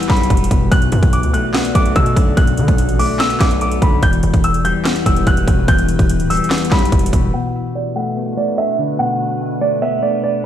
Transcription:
Already playing: E3 B3 E4 G4 B4
0.03 closed hi-hat
0.09 B1 G3 B5, kick, snare, clap, closed hi-hat
0.17 closed hi-hat
0.23 closed hi-hat
0.30 E1, kick, closed hi-hat
0.37 closed hi-hat
0.44 closed hi-hat
0.51 E1 B2, kick, closed hi-hat
0.71 B1 B2 B3 F#4 A4 D5 F#6, kick, closed hi-hat
0.82 closed hi-hat
0.92 F#2, closed hi-hat
1.03 B1, kick, closed hi-hat
1.13 D6, closed hi-hat
1.23 D2, closed hi-hat
1.34 B1 A3 F#6, closed hi-hat
1.54 B3, snare, clap, closed hi-hat
1.65 closed hi-hat
1.75 B1 A3 D6, kick, closed hi-hat
1.86 closed hi-hat
1.96 B2 E6, kick, closed hi-hat
2.06 closed hi-hat
2.16 B1 D3, kick, closed hi-hat
2.37 B1 B2 F#6, kick, closed hi-hat
2.47 closed hi-hat
2.57 D3, closed hi-hat
2.68 B1, kick, closed hi-hat
2.78 closed hi-hat
2.89 A1, closed hi-hat
2.99 B1 A3 D6, open hi-hat
3.19 B3 E6, snare, clap, closed hi-hat
3.30 closed hi-hat
3.40 B1 A3 D6, kick, snare, clap, closed hi-hat
3.51 closed hi-hat
3.61 D6, closed hi-hat
3.71 closed hi-hat
3.82 B1 D3 B5, kick, closed hi-hat
4.03 E1 E2 E3 E4 G4 B4 G6, kick, closed hi-hat
4.13 closed hi-hat
4.23 E1, closed hi-hat
4.34 E1, kick, closed hi-hat
4.44 E6, closed hi-hat
4.54 closed hi-hat
4.65 G3 G6, closed hi-hat
4.85 B3, snare, clap, closed hi-hat
4.96 closed hi-hat
5.06 E1 G3 E6, kick, closed hi-hat
5.16 closed hi-hat
5.27 E1 F#6, kick, closed hi-hat
5.37 closed hi-hat
5.47 E1 B2, kick, closed hi-hat
5.68 E1 E2 G6, kick, closed hi-hat
5.78 closed hi-hat
5.89 closed hi-hat
5.99 E1, kick, closed hi-hat
6.09 closed hi-hat
6.20 D1, closed hi-hat
6.30 G3 E6, closed hi-hat, open hi-hat
6.37 closed hi-hat
6.44 closed hi-hat
6.50 B3, snare, clap, closed hi-hat
6.58 closed hi-hat
6.65 closed hi-hat
6.71 B1 G3 B5, kick, snare, clap, closed hi-hat
6.79 closed hi-hat
6.85 closed hi-hat
6.92 E1, kick, closed hi-hat
6.99 closed hi-hat
7.06 closed hi-hat
7.13 E1 B2, kick, closed hi-hat
7.34 B2 A3 D4 B4 F#5
7.75 D5
7.96 A3 F#5
8.17 B3
8.37 A3 D5
8.58 E5
8.79 D3
8.99 B2 F#5
9.61 A3 D5
9.82 B3 E5
10.02 A3 D5
10.23 D5

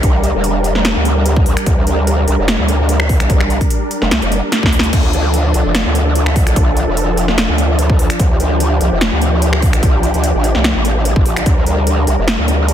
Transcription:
Already playing: C2 G3 D4 A#4
0.03 kick, closed hi-hat
0.24 closed hi-hat
0.34 E1
0.44 closed hi-hat
0.64 closed hi-hat
0.75 snare
0.85 snare, closed hi-hat
0.96 D2
1.05 closed hi-hat
1.26 closed hi-hat
1.36 kick
1.46 open hi-hat
1.57 finger snap, closed hi-hat
1.66 D2, kick, closed hi-hat
1.87 D2, closed hi-hat
2.07 closed hi-hat
2.28 C2, closed hi-hat
2.39 F1
2.48 snare, closed hi-hat
2.59 D2
2.68 closed hi-hat
2.89 closed hi-hat
3.00 finger snap
3.09 kick, open hi-hat
3.20 C2, finger snap, closed hi-hat
3.30 kick, closed hi-hat
3.40 finger snap
3.50 closed hi-hat
3.61 kick, closed hi-hat
3.70 closed hi-hat
3.91 closed hi-hat
4.02 F1, snare
4.11 C2, snare, closed hi-hat
4.22 F1, closed hi-hat
4.32 closed hi-hat
4.52 snare, closed hi-hat
4.63 D2, kick, snare
4.73 open hi-hat
4.79 snare
4.83 closed hi-hat
4.93 D2 F3 A4, kick, closed hi-hat, crash
5.13 D2, closed hi-hat
5.34 closed hi-hat
5.54 C2, closed hi-hat
5.65 F1
5.75 snare, closed hi-hat
5.85 D2
5.95 closed hi-hat
6.15 closed hi-hat
6.26 finger snap
6.36 kick, open hi-hat
6.47 C2, finger snap, closed hi-hat
6.56 kick, closed hi-hat
6.77 closed hi-hat
6.87 E1
6.97 closed hi-hat
7.17 closed hi-hat
7.28 snare
7.38 snare, closed hi-hat
7.49 D2
7.58 closed hi-hat
7.79 closed hi-hat
7.90 kick
7.99 open hi-hat
8.10 finger snap, closed hi-hat
8.20 D2 G4, kick, closed hi-hat
8.40 D2, closed hi-hat
8.60 closed hi-hat
8.81 C2, closed hi-hat
8.92 F1
9.01 snare, closed hi-hat
9.12 D2
9.22 closed hi-hat
9.42 closed hi-hat
9.53 finger snap
9.62 kick, open hi-hat
9.73 C2, finger snap, closed hi-hat
9.83 kick, closed hi-hat
10.03 closed hi-hat
10.14 D2, closed hi-hat
10.24 closed hi-hat
10.35 A1
10.44 closed hi-hat
10.55 C2, snare
10.64 snare, closed hi-hat
10.75 A1
10.85 closed hi-hat
11.05 closed hi-hat
11.16 A1, kick
11.26 open hi-hat
11.36 finger snap, closed hi-hat
11.46 D2 G3 D4 A#4, kick, closed hi-hat
11.66 D2, closed hi-hat
11.87 closed hi-hat
12.07 C2, closed hi-hat
12.18 F1
12.28 snare, closed hi-hat
12.38 D2
12.48 closed hi-hat
12.68 closed hi-hat

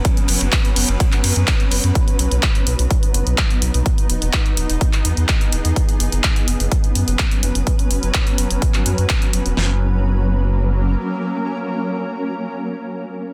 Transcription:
Already playing: F#3 B3 C#4 B4
0.05 kick, closed hi-hat, ride
0.17 closed hi-hat
0.28 F#1, open hi-hat, ride
0.41 F#1, closed hi-hat, ride
0.52 kick, snare, clap, closed hi-hat, ride
0.65 closed hi-hat
0.76 F#1, open hi-hat, ride
0.88 F#1, closed hi-hat, ride
1.00 kick, closed hi-hat, ride
1.12 clap, closed hi-hat
1.23 F#2, snare, open hi-hat, ride
1.36 F#2, closed hi-hat
1.47 kick, snare, clap, closed hi-hat, ride
1.60 closed hi-hat
1.71 F#1, open hi-hat, ride
1.84 F#2, closed hi-hat
1.95 B3 D#4, kick, closed hi-hat
2.08 closed hi-hat
2.19 B1, closed hi-hat
2.31 B1, closed hi-hat
2.43 kick, clap, closed hi-hat
2.55 closed hi-hat
2.67 B1, closed hi-hat
2.79 B1, closed hi-hat
2.91 kick, closed hi-hat
3.03 closed hi-hat
3.14 F#1, closed hi-hat
3.27 B1, closed hi-hat
3.38 kick, clap, closed hi-hat
3.50 closed hi-hat
3.62 B1, closed hi-hat
3.74 B1, closed hi-hat
3.86 E3 G#4, kick, closed hi-hat
3.98 closed hi-hat
4.10 E1, closed hi-hat
4.22 E1, closed hi-hat
4.33 kick, clap, closed hi-hat
4.46 closed hi-hat
4.57 E1, closed hi-hat
4.69 E1, closed hi-hat
4.81 kick, closed hi-hat
4.93 clap, closed hi-hat
5.05 E2, closed hi-hat
5.17 E2, closed hi-hat
5.28 kick, clap, closed hi-hat
5.41 closed hi-hat
5.52 E1, closed hi-hat
5.65 E2, closed hi-hat
5.76 F#3 C#4 B4, kick, closed hi-hat
5.89 closed hi-hat
6.00 F#1, closed hi-hat
6.12 F#1, closed hi-hat
6.24 kick, clap, closed hi-hat
6.36 closed hi-hat
6.48 F#1, closed hi-hat
6.60 F#1, closed hi-hat
6.72 kick, closed hi-hat
6.84 closed hi-hat
6.95 F#2, closed hi-hat
7.08 F#1, closed hi-hat
7.19 kick, clap, closed hi-hat
7.31 closed hi-hat
7.43 F#1, closed hi-hat
7.55 F#1, closed hi-hat
7.67 kick, closed hi-hat
7.79 closed hi-hat
7.91 F#1, closed hi-hat
8.03 F#1, closed hi-hat
8.14 kick, clap, closed hi-hat
8.27 closed hi-hat
8.38 F#1, closed hi-hat
8.51 F#1, closed hi-hat
8.62 kick, closed hi-hat
8.74 clap, closed hi-hat
8.86 F#2, closed hi-hat
8.98 F#2, closed hi-hat
9.09 kick, clap, closed hi-hat
9.22 closed hi-hat
9.33 F#1, closed hi-hat
9.46 E1, closed hi-hat
9.57 F#1 F#3 A#3 C#4 A#4, snare

